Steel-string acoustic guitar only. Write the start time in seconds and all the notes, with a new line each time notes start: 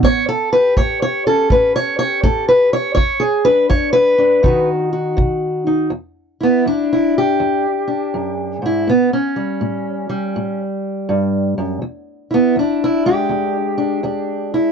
0.04 A2 C#5
0.29 A4
0.53 G4 B4
0.77 A2 C#5
1.02 C#5
1.27 C#4 A4
1.52 A2 B4
1.76 C#5
1.99 G4 C#5
2.24 A2 A4
2.49 B4
2.73 C#5
2.95 E2 C#5
3.20 G#4
3.45 D4 B4
3.69 E2 C#5
3.93 B4
4.18 D4
4.43 B2 D#3 D#4 F#4
4.93 F#4
5.17 B2
5.67 D#4
5.90 E2
6.41 B3 E4
6.66 E2 D4
6.93 E4
7.18 G4
7.40 E2
7.88 D4
8.14 F#2
8.62 G#2 E4
8.87 A2 B3
9.13 C#4
9.36 G3
9.61 A2
10.09 G3
10.36 A2
11.09 G2
11.58 F#2
11.82 E2
12.31 B3 E4
12.56 E2 D4
12.84 E4
13.06 G#3 G4
13.29 E2
13.78 D4
14.03 E2 D4
14.54 E4